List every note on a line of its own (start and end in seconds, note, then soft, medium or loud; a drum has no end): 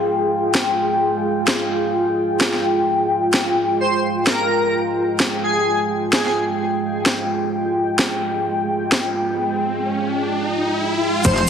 0.00 11.21 G#3 medium
0.00 9.39 F4 medium
0.00 11.21 F4 medium
0.00 3.79 G#4 medium
0.00 9.39 G5 medium
0.55 snare loud
1.48 snare loud
2.41 snare loud
2.54 snare soft
3.34 snare loud
3.81 3.99 C5 medium
3.81 11.23 G5 medium
4.27 4.74 A#4 medium
4.27 snare loud
5.20 snare loud
5.43 5.79 G#4 medium
6.13 6.21 G#4 medium
6.13 snare loud
6.26 6.33 G#4 medium
6.26 snare soft
7.06 snare loud
7.53 riser medium
7.99 snare loud
8.92 snare loud
11.24 11.46 F1 medium
11.24 11.44 C5 medium
11.24 kick loud
11.24 closed hi-hat medium
11.24 crash loud
11.24 sub drop medium
11.24 shaker medium
11.38 closed hi-hat medium